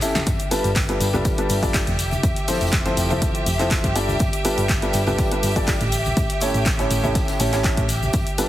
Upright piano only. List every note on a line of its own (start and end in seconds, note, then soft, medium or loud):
0.02 0.19 C#4 medium
0.02 0.19 E4 medium
0.02 0.19 G4 medium
0.02 0.19 A4 medium
0.02 0.19 E5 loud
0.51 0.68 G3 loud
0.51 0.68 D4 medium
0.51 0.68 F4 medium
0.51 0.68 G4 medium
0.51 0.68 A4 medium
0.51 0.68 B4 loud
0.89 1.05 G3 medium
0.89 1.05 D4 medium
0.89 1.05 F4 medium
0.89 1.05 G4 medium
0.89 1.05 A4 medium
0.89 1.05 B4 loud
1.13 1.34 G3 loud
1.13 1.34 D4 medium
1.13 1.34 F4 medium
1.13 1.34 G4 medium
1.13 1.34 A4 medium
1.13 1.34 B4 loud
1.38 1.54 G3 medium
1.38 1.54 D4 medium
1.38 1.54 F4 medium
1.38 1.54 G4 medium
1.38 1.54 A4 medium
1.38 1.54 B4 loud
1.63 1.79 G3 loud
1.63 1.79 D4 medium
1.63 1.79 F4 medium
1.63 1.79 G4 medium
1.63 1.79 A4 medium
1.63 1.79 D5 loud
2.48 2.82 F3 medium
2.48 2.82 C4 medium
2.48 2.83 E4 medium
2.48 2.82 F4 medium
2.48 2.82 A4 medium
2.48 2.82 C5 medium
2.86 3.07 F3 loud
2.86 3.07 C4 medium
2.86 3.07 E4 medium
2.86 3.07 F4 medium
2.86 3.07 A4 medium
2.86 3.07 C5 loud
3.10 3.44 F3 medium
3.10 3.44 C4 medium
3.10 3.44 E4 medium
3.10 3.44 F4 medium
3.10 3.44 A4 medium
3.10 3.44 C5 medium
3.59 3.86 F3 medium
3.59 3.86 C4 medium
3.59 3.86 E4 medium
3.59 3.86 F4 medium
3.59 3.86 A4 medium
3.59 3.86 C5 medium
3.96 4.12 G3 medium
3.96 4.12 D4 medium
3.96 4.12 F4 medium
3.96 4.12 G4 medium
3.96 4.12 A4 medium
3.96 4.12 D5 loud
4.45 4.62 G3 loud
4.45 4.62 D4 medium
4.45 4.62 F4 loud
4.45 4.62 G4 medium
4.45 4.62 A4 medium
4.45 4.62 B4 loud
4.82 4.98 G3 medium
4.82 4.98 D4 medium
4.82 4.98 F4 medium
4.82 4.98 G4 medium
4.82 4.98 A4 medium
4.82 4.98 B4 loud
5.07 5.28 G3 medium
5.07 5.28 D4 medium
5.07 5.28 F4 medium
5.07 5.28 G4 medium
5.07 5.28 A4 medium
5.07 5.28 B4 loud
5.31 5.47 G3 medium
5.31 5.47 D4 medium
5.31 5.47 F4 medium
5.31 5.47 G4 medium
5.31 5.47 A4 medium
5.31 5.47 B4 loud
5.56 5.72 G3 loud
5.56 5.72 D4 medium
5.56 5.72 F4 medium
5.56 5.72 G4 medium
5.56 5.72 A4 medium
5.56 5.72 D5 loud
6.41 6.76 A2 medium
6.41 6.76 C#4 medium
6.41 6.76 E4 medium
6.41 6.76 G4 medium
6.41 6.76 A4 medium
6.41 6.76 C#5 medium
6.79 7.00 A2 medium
6.79 7.00 C#4 medium
6.79 7.00 E4 medium
6.79 7.00 G4 medium
6.79 7.00 A4 medium
6.79 7.00 C#5 loud
7.04 7.37 A2 medium
7.04 7.37 C#4 medium
7.04 7.37 E4 medium
7.04 7.37 G4 medium
7.04 7.37 A4 medium
7.04 7.37 C#5 medium
7.40 7.51 A2 medium
7.40 7.51 C#4 medium
7.40 7.51 E4 medium
7.40 7.51 G4 medium
7.40 7.51 A4 medium
7.40 7.51 C#5 medium
7.53 7.63 A2 medium
7.53 7.63 C#4 medium
7.53 7.63 E4 medium
7.53 7.63 G4 medium
7.53 7.63 A4 medium
7.53 7.63 C#5 medium
7.64 7.81 A2 medium
7.64 7.81 C#4 medium
7.64 7.81 E4 medium
7.64 7.81 G4 medium
7.64 7.81 A4 medium
7.64 7.81 C#5 medium
8.38 8.49 G3 loud
8.38 8.49 D4 medium
8.38 8.49 F4 medium
8.38 8.49 G4 medium
8.38 8.49 A4 medium
8.38 8.49 B4 loud